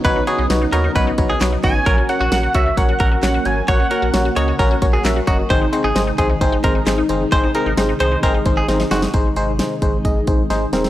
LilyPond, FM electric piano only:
\new Staff \with { instrumentName = "FM electric piano" } { \time 4/4 \key gis \minor \tempo 4 = 132 <dis' fis' b' cis''>8 <dis' fis' b' cis''>8 <dis' fis' b' cis''>8 <dis' fis' b' cis''>8 <dis' fis' b' cis''>8 <dis' fis' b' cis''>8 <dis' fis' b' cis''>8 <dis' fis' b' cis''>8 | <cis' fis' ais' cis''>8 <cis' fis' ais' cis''>8 <cis' fis' ais' cis''>8 <cis' fis' ais' cis''>8 <cis' fis' ais' cis''>8 <cis' fis' ais' cis''>8 <cis' fis' ais' cis''>8 <cis' fis' ais' cis''>8 | <cis' fis' ais' cis''>8 <cis' fis' ais' cis''>8 <cis' fis' ais' cis''>8 <cis' fis' ais' dis''>8 <cis' fis' ais' cis''>8 <cis' fis' ais' cis''>8 <cis' fis' ais' e''>8 <cis' fis' ais' dis''>8 | <bis dis' gis' bis'>8 <bis dis' gis' bis'>8 <bis dis' gis' bis'>8 <bis dis' gis' bis'>8 <bis dis' gis' bis'>8 <bis dis' gis' bis'>8 <bis dis' gis' bis'>8 <bis dis' gis' bis'>8 |
<bis dis' gis' bis'>8 <bis dis' gis' ais'>8 <bis dis' gis' bis'>8 <bis dis' gis' bis'>8 <bis dis' gis' bis'>8 <bis dis' gis' bis'>8 <bis dis' gis' bis'>8 <bis dis' gis' bis'>8 | <dis' gis' bis'>8 <dis' gis' bis'>8 <dis' gis' bis'>8 <dis' gis' bis'>8 <dis' gis' dis''>8 <dis' gis' bis'>8 <dis' gis' bis'>8 <dis' gis' ais'>8 | }